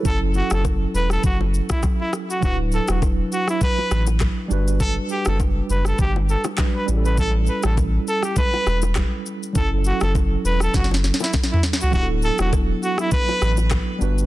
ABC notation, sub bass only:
X:1
M:4/4
L:1/16
Q:"Swing 16ths" 1/4=101
K:D
V:1 name="Sub bass" clef=bass
F,,,3 F,,,3 E,,,2 F,,,3 z4 z | D,,,3 E,,,3 z4 A,,,3 z G,,,2- | G,,,2 z F,,,3 F,,,2 G,,,3 z3 A,,,2- | A,,,3 A,,,3 z4 E,,,3 z3 |
F,,,3 F,,,3 E,,,2 F,,,3 z4 z | D,,,3 E,,,3 z4 A,,,3 z G,,,2 |]